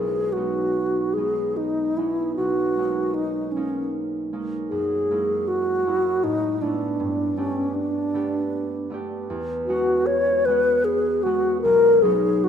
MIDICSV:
0, 0, Header, 1, 3, 480
1, 0, Start_track
1, 0, Key_signature, 5, "major"
1, 0, Tempo, 805369
1, 1414, Time_signature, 3, 2, 24, 8
1, 1887, Tempo, 766284
1, 5727, Tempo, 788436
1, 7669, End_track
2, 0, Start_track
2, 0, Title_t, "Alto flute"
2, 0, Program_c, 0, 73
2, 0, Note_on_c, 0, 68, 45
2, 195, Note_on_c, 0, 66, 46
2, 204, Note_off_c, 0, 68, 0
2, 677, Note_on_c, 0, 68, 44
2, 686, Note_off_c, 0, 66, 0
2, 934, Note_on_c, 0, 63, 47
2, 943, Note_off_c, 0, 68, 0
2, 1176, Note_on_c, 0, 64, 45
2, 1185, Note_off_c, 0, 63, 0
2, 1403, Note_off_c, 0, 64, 0
2, 1406, Note_on_c, 0, 66, 50
2, 1872, Note_on_c, 0, 63, 47
2, 1881, Note_off_c, 0, 66, 0
2, 2106, Note_on_c, 0, 61, 40
2, 2116, Note_off_c, 0, 63, 0
2, 2358, Note_off_c, 0, 61, 0
2, 2844, Note_on_c, 0, 68, 58
2, 3335, Note_on_c, 0, 66, 57
2, 3344, Note_off_c, 0, 68, 0
2, 3811, Note_on_c, 0, 63, 59
2, 3820, Note_off_c, 0, 66, 0
2, 4048, Note_on_c, 0, 62, 49
2, 4057, Note_off_c, 0, 63, 0
2, 4523, Note_on_c, 0, 61, 54
2, 4533, Note_off_c, 0, 62, 0
2, 4754, Note_on_c, 0, 62, 56
2, 4763, Note_off_c, 0, 61, 0
2, 5477, Note_off_c, 0, 62, 0
2, 5952, Note_on_c, 0, 66, 65
2, 6194, Note_on_c, 0, 73, 67
2, 6203, Note_off_c, 0, 66, 0
2, 6431, Note_on_c, 0, 71, 65
2, 6440, Note_off_c, 0, 73, 0
2, 6670, Note_on_c, 0, 68, 64
2, 6679, Note_off_c, 0, 71, 0
2, 6905, Note_on_c, 0, 66, 65
2, 6914, Note_off_c, 0, 68, 0
2, 7137, Note_off_c, 0, 66, 0
2, 7140, Note_on_c, 0, 70, 77
2, 7387, Note_on_c, 0, 68, 64
2, 7396, Note_off_c, 0, 70, 0
2, 7641, Note_on_c, 0, 66, 73
2, 7650, Note_off_c, 0, 68, 0
2, 7669, Note_off_c, 0, 66, 0
2, 7669, End_track
3, 0, Start_track
3, 0, Title_t, "Harp"
3, 0, Program_c, 1, 46
3, 0, Note_on_c, 1, 35, 28
3, 0, Note_on_c, 1, 56, 23
3, 0, Note_on_c, 1, 66, 22
3, 0, Note_on_c, 1, 73, 27
3, 207, Note_off_c, 1, 56, 0
3, 214, Note_on_c, 1, 56, 24
3, 216, Note_on_c, 1, 59, 25
3, 219, Note_on_c, 1, 61, 22
3, 220, Note_on_c, 1, 63, 26
3, 564, Note_off_c, 1, 73, 0
3, 691, Note_off_c, 1, 56, 0
3, 693, Note_off_c, 1, 59, 0
3, 696, Note_on_c, 1, 56, 22
3, 697, Note_off_c, 1, 61, 0
3, 699, Note_off_c, 1, 63, 0
3, 703, Note_on_c, 1, 59, 23
3, 703, Note_on_c, 1, 61, 24
3, 707, Note_on_c, 1, 63, 25
3, 1172, Note_off_c, 1, 56, 0
3, 1175, Note_off_c, 1, 59, 0
3, 1175, Note_off_c, 1, 61, 0
3, 1179, Note_off_c, 1, 63, 0
3, 1180, Note_on_c, 1, 56, 21
3, 1181, Note_on_c, 1, 59, 25
3, 1184, Note_on_c, 1, 61, 21
3, 1186, Note_on_c, 1, 63, 27
3, 1411, Note_off_c, 1, 35, 0
3, 1418, Note_on_c, 1, 35, 29
3, 1650, Note_off_c, 1, 56, 0
3, 1655, Note_off_c, 1, 61, 0
3, 1656, Note_on_c, 1, 56, 24
3, 1659, Note_off_c, 1, 63, 0
3, 1659, Note_on_c, 1, 58, 25
3, 1662, Note_on_c, 1, 61, 23
3, 1666, Note_on_c, 1, 63, 26
3, 2054, Note_off_c, 1, 66, 0
3, 2127, Note_off_c, 1, 58, 0
3, 2129, Note_off_c, 1, 56, 0
3, 2132, Note_off_c, 1, 61, 0
3, 2134, Note_off_c, 1, 63, 0
3, 2135, Note_on_c, 1, 56, 24
3, 2137, Note_on_c, 1, 58, 25
3, 2138, Note_on_c, 1, 61, 25
3, 2142, Note_on_c, 1, 63, 27
3, 2606, Note_off_c, 1, 56, 0
3, 2609, Note_off_c, 1, 58, 0
3, 2613, Note_on_c, 1, 56, 24
3, 2615, Note_off_c, 1, 61, 0
3, 2616, Note_off_c, 1, 63, 0
3, 2617, Note_on_c, 1, 58, 25
3, 2622, Note_on_c, 1, 61, 27
3, 2624, Note_on_c, 1, 63, 29
3, 2857, Note_on_c, 1, 42, 36
3, 2878, Note_off_c, 1, 35, 0
3, 2881, Note_off_c, 1, 59, 0
3, 2882, Note_off_c, 1, 63, 0
3, 3094, Note_off_c, 1, 56, 0
3, 3098, Note_off_c, 1, 58, 0
3, 3100, Note_off_c, 1, 61, 0
3, 3102, Note_on_c, 1, 56, 28
3, 3104, Note_on_c, 1, 58, 31
3, 3109, Note_on_c, 1, 61, 28
3, 3110, Note_on_c, 1, 64, 30
3, 3568, Note_off_c, 1, 56, 0
3, 3570, Note_off_c, 1, 58, 0
3, 3573, Note_off_c, 1, 61, 0
3, 3574, Note_on_c, 1, 56, 27
3, 3578, Note_off_c, 1, 64, 0
3, 3580, Note_on_c, 1, 58, 28
3, 3581, Note_on_c, 1, 61, 28
3, 3585, Note_on_c, 1, 64, 29
3, 3806, Note_on_c, 1, 45, 41
3, 3831, Note_off_c, 1, 56, 0
3, 3832, Note_off_c, 1, 42, 0
3, 3832, Note_off_c, 1, 58, 0
3, 4048, Note_off_c, 1, 61, 0
3, 4050, Note_on_c, 1, 57, 28
3, 4053, Note_off_c, 1, 64, 0
3, 4055, Note_on_c, 1, 61, 28
3, 4056, Note_on_c, 1, 59, 28
3, 4060, Note_on_c, 1, 64, 31
3, 4287, Note_on_c, 1, 43, 37
3, 4302, Note_off_c, 1, 45, 0
3, 4309, Note_off_c, 1, 61, 0
3, 4311, Note_off_c, 1, 64, 0
3, 4514, Note_off_c, 1, 57, 0
3, 4518, Note_off_c, 1, 59, 0
3, 4521, Note_on_c, 1, 57, 30
3, 4524, Note_on_c, 1, 59, 31
3, 4528, Note_on_c, 1, 62, 31
3, 4528, Note_on_c, 1, 67, 35
3, 4995, Note_off_c, 1, 57, 0
3, 4997, Note_off_c, 1, 59, 0
3, 4998, Note_off_c, 1, 62, 0
3, 5001, Note_on_c, 1, 57, 31
3, 5002, Note_off_c, 1, 67, 0
3, 5006, Note_on_c, 1, 59, 32
3, 5006, Note_on_c, 1, 62, 31
3, 5010, Note_on_c, 1, 67, 32
3, 5475, Note_off_c, 1, 59, 0
3, 5477, Note_off_c, 1, 57, 0
3, 5478, Note_on_c, 1, 59, 34
3, 5482, Note_off_c, 1, 62, 0
3, 5484, Note_off_c, 1, 67, 0
3, 5485, Note_on_c, 1, 57, 34
3, 5490, Note_on_c, 1, 62, 31
3, 5503, Note_on_c, 1, 67, 36
3, 5728, Note_on_c, 1, 40, 45
3, 5744, Note_off_c, 1, 43, 0
3, 5745, Note_off_c, 1, 57, 0
3, 5748, Note_off_c, 1, 62, 0
3, 5748, Note_off_c, 1, 67, 0
3, 5961, Note_off_c, 1, 59, 0
3, 5964, Note_on_c, 1, 56, 36
3, 5967, Note_on_c, 1, 59, 36
3, 5970, Note_on_c, 1, 61, 34
3, 5973, Note_on_c, 1, 66, 39
3, 6437, Note_off_c, 1, 56, 0
3, 6439, Note_off_c, 1, 59, 0
3, 6441, Note_off_c, 1, 61, 0
3, 6441, Note_on_c, 1, 59, 33
3, 6442, Note_off_c, 1, 66, 0
3, 6444, Note_on_c, 1, 56, 34
3, 6448, Note_on_c, 1, 61, 35
3, 6456, Note_on_c, 1, 66, 39
3, 6912, Note_off_c, 1, 56, 0
3, 6914, Note_off_c, 1, 59, 0
3, 6917, Note_off_c, 1, 61, 0
3, 6918, Note_off_c, 1, 66, 0
3, 6918, Note_on_c, 1, 56, 36
3, 6923, Note_on_c, 1, 59, 33
3, 6923, Note_on_c, 1, 61, 32
3, 6926, Note_on_c, 1, 66, 36
3, 7156, Note_on_c, 1, 35, 41
3, 7174, Note_off_c, 1, 40, 0
3, 7174, Note_off_c, 1, 56, 0
3, 7387, Note_off_c, 1, 59, 0
3, 7392, Note_off_c, 1, 61, 0
3, 7392, Note_on_c, 1, 54, 35
3, 7396, Note_on_c, 1, 59, 38
3, 7398, Note_on_c, 1, 61, 38
3, 7403, Note_on_c, 1, 63, 44
3, 7669, Note_off_c, 1, 35, 0
3, 7669, Note_off_c, 1, 54, 0
3, 7669, Note_off_c, 1, 59, 0
3, 7669, Note_off_c, 1, 61, 0
3, 7669, Note_off_c, 1, 63, 0
3, 7669, Note_off_c, 1, 66, 0
3, 7669, End_track
0, 0, End_of_file